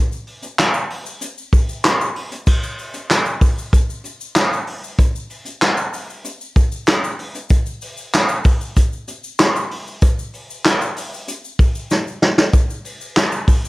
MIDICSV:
0, 0, Header, 1, 2, 480
1, 0, Start_track
1, 0, Tempo, 628931
1, 1888, Time_signature, 4, 2, 24, 8
1, 10445, End_track
2, 0, Start_track
2, 0, Title_t, "Drums"
2, 93, Note_on_c, 9, 82, 59
2, 169, Note_off_c, 9, 82, 0
2, 204, Note_on_c, 9, 46, 59
2, 280, Note_off_c, 9, 46, 0
2, 324, Note_on_c, 9, 42, 48
2, 327, Note_on_c, 9, 82, 58
2, 400, Note_off_c, 9, 42, 0
2, 403, Note_off_c, 9, 82, 0
2, 449, Note_on_c, 9, 42, 72
2, 451, Note_on_c, 9, 38, 106
2, 451, Note_on_c, 9, 39, 87
2, 455, Note_on_c, 9, 82, 80
2, 525, Note_off_c, 9, 42, 0
2, 527, Note_off_c, 9, 38, 0
2, 527, Note_off_c, 9, 39, 0
2, 531, Note_off_c, 9, 82, 0
2, 564, Note_on_c, 9, 82, 56
2, 640, Note_off_c, 9, 82, 0
2, 688, Note_on_c, 9, 46, 84
2, 765, Note_off_c, 9, 46, 0
2, 809, Note_on_c, 9, 82, 58
2, 886, Note_off_c, 9, 82, 0
2, 924, Note_on_c, 9, 42, 78
2, 929, Note_on_c, 9, 82, 97
2, 1001, Note_off_c, 9, 42, 0
2, 1005, Note_off_c, 9, 82, 0
2, 1051, Note_on_c, 9, 82, 58
2, 1127, Note_off_c, 9, 82, 0
2, 1162, Note_on_c, 9, 46, 60
2, 1166, Note_on_c, 9, 36, 87
2, 1172, Note_on_c, 9, 82, 61
2, 1238, Note_off_c, 9, 46, 0
2, 1242, Note_off_c, 9, 36, 0
2, 1248, Note_off_c, 9, 82, 0
2, 1289, Note_on_c, 9, 82, 58
2, 1365, Note_off_c, 9, 82, 0
2, 1403, Note_on_c, 9, 82, 75
2, 1409, Note_on_c, 9, 42, 102
2, 1410, Note_on_c, 9, 38, 117
2, 1410, Note_on_c, 9, 39, 93
2, 1480, Note_off_c, 9, 82, 0
2, 1485, Note_off_c, 9, 42, 0
2, 1486, Note_off_c, 9, 38, 0
2, 1486, Note_off_c, 9, 39, 0
2, 1535, Note_on_c, 9, 82, 52
2, 1611, Note_off_c, 9, 82, 0
2, 1646, Note_on_c, 9, 46, 78
2, 1722, Note_off_c, 9, 46, 0
2, 1768, Note_on_c, 9, 42, 56
2, 1768, Note_on_c, 9, 82, 63
2, 1844, Note_off_c, 9, 82, 0
2, 1845, Note_off_c, 9, 42, 0
2, 1881, Note_on_c, 9, 82, 76
2, 1884, Note_on_c, 9, 49, 94
2, 1885, Note_on_c, 9, 36, 100
2, 1958, Note_off_c, 9, 82, 0
2, 1960, Note_off_c, 9, 49, 0
2, 1962, Note_off_c, 9, 36, 0
2, 2009, Note_on_c, 9, 82, 59
2, 2086, Note_off_c, 9, 82, 0
2, 2124, Note_on_c, 9, 46, 68
2, 2127, Note_on_c, 9, 82, 50
2, 2200, Note_off_c, 9, 46, 0
2, 2204, Note_off_c, 9, 82, 0
2, 2242, Note_on_c, 9, 42, 53
2, 2243, Note_on_c, 9, 82, 54
2, 2318, Note_off_c, 9, 42, 0
2, 2319, Note_off_c, 9, 82, 0
2, 2368, Note_on_c, 9, 42, 81
2, 2370, Note_on_c, 9, 38, 107
2, 2370, Note_on_c, 9, 39, 82
2, 2372, Note_on_c, 9, 82, 78
2, 2445, Note_off_c, 9, 42, 0
2, 2446, Note_off_c, 9, 38, 0
2, 2446, Note_off_c, 9, 39, 0
2, 2449, Note_off_c, 9, 82, 0
2, 2484, Note_on_c, 9, 82, 57
2, 2560, Note_off_c, 9, 82, 0
2, 2605, Note_on_c, 9, 36, 99
2, 2608, Note_on_c, 9, 82, 63
2, 2609, Note_on_c, 9, 46, 72
2, 2682, Note_off_c, 9, 36, 0
2, 2684, Note_off_c, 9, 82, 0
2, 2685, Note_off_c, 9, 46, 0
2, 2735, Note_on_c, 9, 82, 53
2, 2811, Note_off_c, 9, 82, 0
2, 2845, Note_on_c, 9, 42, 77
2, 2847, Note_on_c, 9, 36, 88
2, 2852, Note_on_c, 9, 82, 84
2, 2921, Note_off_c, 9, 42, 0
2, 2923, Note_off_c, 9, 36, 0
2, 2929, Note_off_c, 9, 82, 0
2, 2975, Note_on_c, 9, 82, 51
2, 3052, Note_off_c, 9, 82, 0
2, 3082, Note_on_c, 9, 42, 65
2, 3093, Note_on_c, 9, 82, 60
2, 3158, Note_off_c, 9, 42, 0
2, 3169, Note_off_c, 9, 82, 0
2, 3211, Note_on_c, 9, 82, 63
2, 3287, Note_off_c, 9, 82, 0
2, 3324, Note_on_c, 9, 42, 104
2, 3325, Note_on_c, 9, 38, 112
2, 3325, Note_on_c, 9, 39, 92
2, 3325, Note_on_c, 9, 82, 74
2, 3401, Note_off_c, 9, 38, 0
2, 3401, Note_off_c, 9, 39, 0
2, 3401, Note_off_c, 9, 42, 0
2, 3401, Note_off_c, 9, 82, 0
2, 3457, Note_on_c, 9, 82, 51
2, 3533, Note_off_c, 9, 82, 0
2, 3563, Note_on_c, 9, 46, 79
2, 3639, Note_off_c, 9, 46, 0
2, 3692, Note_on_c, 9, 82, 56
2, 3769, Note_off_c, 9, 82, 0
2, 3802, Note_on_c, 9, 42, 85
2, 3806, Note_on_c, 9, 36, 100
2, 3809, Note_on_c, 9, 82, 67
2, 3878, Note_off_c, 9, 42, 0
2, 3882, Note_off_c, 9, 36, 0
2, 3886, Note_off_c, 9, 82, 0
2, 3934, Note_on_c, 9, 82, 53
2, 4010, Note_off_c, 9, 82, 0
2, 4041, Note_on_c, 9, 46, 58
2, 4048, Note_on_c, 9, 82, 49
2, 4117, Note_off_c, 9, 46, 0
2, 4124, Note_off_c, 9, 82, 0
2, 4160, Note_on_c, 9, 42, 51
2, 4166, Note_on_c, 9, 82, 60
2, 4236, Note_off_c, 9, 42, 0
2, 4243, Note_off_c, 9, 82, 0
2, 4287, Note_on_c, 9, 42, 78
2, 4289, Note_on_c, 9, 38, 106
2, 4289, Note_on_c, 9, 39, 89
2, 4295, Note_on_c, 9, 82, 71
2, 4363, Note_off_c, 9, 42, 0
2, 4365, Note_off_c, 9, 38, 0
2, 4365, Note_off_c, 9, 39, 0
2, 4371, Note_off_c, 9, 82, 0
2, 4405, Note_on_c, 9, 82, 56
2, 4481, Note_off_c, 9, 82, 0
2, 4526, Note_on_c, 9, 46, 69
2, 4529, Note_on_c, 9, 82, 68
2, 4602, Note_off_c, 9, 46, 0
2, 4605, Note_off_c, 9, 82, 0
2, 4654, Note_on_c, 9, 82, 58
2, 4730, Note_off_c, 9, 82, 0
2, 4765, Note_on_c, 9, 42, 80
2, 4770, Note_on_c, 9, 82, 94
2, 4842, Note_off_c, 9, 42, 0
2, 4847, Note_off_c, 9, 82, 0
2, 4891, Note_on_c, 9, 82, 57
2, 4967, Note_off_c, 9, 82, 0
2, 5002, Note_on_c, 9, 42, 61
2, 5007, Note_on_c, 9, 36, 84
2, 5009, Note_on_c, 9, 82, 63
2, 5078, Note_off_c, 9, 42, 0
2, 5083, Note_off_c, 9, 36, 0
2, 5085, Note_off_c, 9, 82, 0
2, 5126, Note_on_c, 9, 82, 57
2, 5202, Note_off_c, 9, 82, 0
2, 5239, Note_on_c, 9, 82, 72
2, 5248, Note_on_c, 9, 42, 112
2, 5249, Note_on_c, 9, 38, 110
2, 5249, Note_on_c, 9, 39, 84
2, 5316, Note_off_c, 9, 82, 0
2, 5324, Note_off_c, 9, 42, 0
2, 5325, Note_off_c, 9, 38, 0
2, 5325, Note_off_c, 9, 39, 0
2, 5374, Note_on_c, 9, 82, 57
2, 5450, Note_off_c, 9, 82, 0
2, 5485, Note_on_c, 9, 46, 77
2, 5561, Note_off_c, 9, 46, 0
2, 5608, Note_on_c, 9, 42, 61
2, 5609, Note_on_c, 9, 82, 61
2, 5685, Note_off_c, 9, 42, 0
2, 5686, Note_off_c, 9, 82, 0
2, 5719, Note_on_c, 9, 82, 69
2, 5725, Note_on_c, 9, 42, 88
2, 5727, Note_on_c, 9, 36, 105
2, 5796, Note_off_c, 9, 82, 0
2, 5802, Note_off_c, 9, 42, 0
2, 5804, Note_off_c, 9, 36, 0
2, 5847, Note_on_c, 9, 82, 52
2, 5923, Note_off_c, 9, 82, 0
2, 5965, Note_on_c, 9, 46, 68
2, 5965, Note_on_c, 9, 82, 52
2, 6041, Note_off_c, 9, 82, 0
2, 6042, Note_off_c, 9, 46, 0
2, 6083, Note_on_c, 9, 82, 56
2, 6159, Note_off_c, 9, 82, 0
2, 6211, Note_on_c, 9, 82, 77
2, 6213, Note_on_c, 9, 42, 84
2, 6214, Note_on_c, 9, 38, 112
2, 6214, Note_on_c, 9, 39, 90
2, 6287, Note_off_c, 9, 82, 0
2, 6289, Note_off_c, 9, 42, 0
2, 6291, Note_off_c, 9, 38, 0
2, 6291, Note_off_c, 9, 39, 0
2, 6324, Note_on_c, 9, 82, 60
2, 6400, Note_off_c, 9, 82, 0
2, 6445, Note_on_c, 9, 82, 63
2, 6449, Note_on_c, 9, 36, 104
2, 6453, Note_on_c, 9, 46, 73
2, 6521, Note_off_c, 9, 82, 0
2, 6525, Note_off_c, 9, 36, 0
2, 6530, Note_off_c, 9, 46, 0
2, 6570, Note_on_c, 9, 82, 50
2, 6646, Note_off_c, 9, 82, 0
2, 6690, Note_on_c, 9, 36, 79
2, 6690, Note_on_c, 9, 82, 94
2, 6691, Note_on_c, 9, 42, 82
2, 6766, Note_off_c, 9, 82, 0
2, 6767, Note_off_c, 9, 36, 0
2, 6767, Note_off_c, 9, 42, 0
2, 6812, Note_on_c, 9, 82, 59
2, 6889, Note_off_c, 9, 82, 0
2, 6926, Note_on_c, 9, 42, 62
2, 6930, Note_on_c, 9, 82, 66
2, 7003, Note_off_c, 9, 42, 0
2, 7007, Note_off_c, 9, 82, 0
2, 7050, Note_on_c, 9, 82, 62
2, 7126, Note_off_c, 9, 82, 0
2, 7166, Note_on_c, 9, 82, 86
2, 7170, Note_on_c, 9, 42, 99
2, 7171, Note_on_c, 9, 38, 99
2, 7171, Note_on_c, 9, 39, 86
2, 7242, Note_off_c, 9, 82, 0
2, 7247, Note_off_c, 9, 38, 0
2, 7247, Note_off_c, 9, 39, 0
2, 7247, Note_off_c, 9, 42, 0
2, 7297, Note_on_c, 9, 82, 57
2, 7373, Note_off_c, 9, 82, 0
2, 7410, Note_on_c, 9, 46, 77
2, 7486, Note_off_c, 9, 46, 0
2, 7535, Note_on_c, 9, 82, 54
2, 7611, Note_off_c, 9, 82, 0
2, 7646, Note_on_c, 9, 42, 94
2, 7647, Note_on_c, 9, 82, 74
2, 7649, Note_on_c, 9, 36, 114
2, 7723, Note_off_c, 9, 42, 0
2, 7723, Note_off_c, 9, 82, 0
2, 7725, Note_off_c, 9, 36, 0
2, 7775, Note_on_c, 9, 82, 55
2, 7852, Note_off_c, 9, 82, 0
2, 7886, Note_on_c, 9, 46, 67
2, 7896, Note_on_c, 9, 82, 51
2, 7962, Note_off_c, 9, 46, 0
2, 7972, Note_off_c, 9, 82, 0
2, 8015, Note_on_c, 9, 82, 60
2, 8092, Note_off_c, 9, 82, 0
2, 8128, Note_on_c, 9, 42, 87
2, 8130, Note_on_c, 9, 38, 101
2, 8130, Note_on_c, 9, 39, 84
2, 8144, Note_on_c, 9, 82, 80
2, 8205, Note_off_c, 9, 42, 0
2, 8206, Note_off_c, 9, 38, 0
2, 8206, Note_off_c, 9, 39, 0
2, 8220, Note_off_c, 9, 82, 0
2, 8253, Note_on_c, 9, 82, 63
2, 8330, Note_off_c, 9, 82, 0
2, 8367, Note_on_c, 9, 46, 85
2, 8378, Note_on_c, 9, 82, 62
2, 8443, Note_off_c, 9, 46, 0
2, 8454, Note_off_c, 9, 82, 0
2, 8500, Note_on_c, 9, 82, 61
2, 8576, Note_off_c, 9, 82, 0
2, 8608, Note_on_c, 9, 42, 81
2, 8613, Note_on_c, 9, 82, 96
2, 8684, Note_off_c, 9, 42, 0
2, 8690, Note_off_c, 9, 82, 0
2, 8735, Note_on_c, 9, 82, 59
2, 8811, Note_off_c, 9, 82, 0
2, 8843, Note_on_c, 9, 46, 62
2, 8847, Note_on_c, 9, 36, 86
2, 8851, Note_on_c, 9, 82, 63
2, 8919, Note_off_c, 9, 46, 0
2, 8924, Note_off_c, 9, 36, 0
2, 8928, Note_off_c, 9, 82, 0
2, 8968, Note_on_c, 9, 82, 56
2, 9044, Note_off_c, 9, 82, 0
2, 9086, Note_on_c, 9, 82, 81
2, 9090, Note_on_c, 9, 38, 60
2, 9162, Note_off_c, 9, 82, 0
2, 9167, Note_off_c, 9, 38, 0
2, 9214, Note_on_c, 9, 82, 52
2, 9291, Note_off_c, 9, 82, 0
2, 9328, Note_on_c, 9, 38, 94
2, 9404, Note_off_c, 9, 38, 0
2, 9448, Note_on_c, 9, 38, 97
2, 9452, Note_on_c, 9, 82, 54
2, 9525, Note_off_c, 9, 38, 0
2, 9528, Note_off_c, 9, 82, 0
2, 9566, Note_on_c, 9, 36, 109
2, 9566, Note_on_c, 9, 42, 80
2, 9566, Note_on_c, 9, 82, 77
2, 9642, Note_off_c, 9, 36, 0
2, 9642, Note_off_c, 9, 42, 0
2, 9642, Note_off_c, 9, 82, 0
2, 9694, Note_on_c, 9, 82, 58
2, 9770, Note_off_c, 9, 82, 0
2, 9802, Note_on_c, 9, 46, 62
2, 9812, Note_on_c, 9, 82, 48
2, 9879, Note_off_c, 9, 46, 0
2, 9888, Note_off_c, 9, 82, 0
2, 9927, Note_on_c, 9, 82, 61
2, 10003, Note_off_c, 9, 82, 0
2, 10048, Note_on_c, 9, 42, 90
2, 10049, Note_on_c, 9, 38, 108
2, 10049, Note_on_c, 9, 39, 83
2, 10055, Note_on_c, 9, 82, 70
2, 10124, Note_off_c, 9, 42, 0
2, 10126, Note_off_c, 9, 38, 0
2, 10126, Note_off_c, 9, 39, 0
2, 10131, Note_off_c, 9, 82, 0
2, 10164, Note_on_c, 9, 82, 61
2, 10241, Note_off_c, 9, 82, 0
2, 10287, Note_on_c, 9, 36, 99
2, 10288, Note_on_c, 9, 46, 83
2, 10291, Note_on_c, 9, 82, 67
2, 10363, Note_off_c, 9, 36, 0
2, 10365, Note_off_c, 9, 46, 0
2, 10367, Note_off_c, 9, 82, 0
2, 10417, Note_on_c, 9, 82, 59
2, 10445, Note_off_c, 9, 82, 0
2, 10445, End_track
0, 0, End_of_file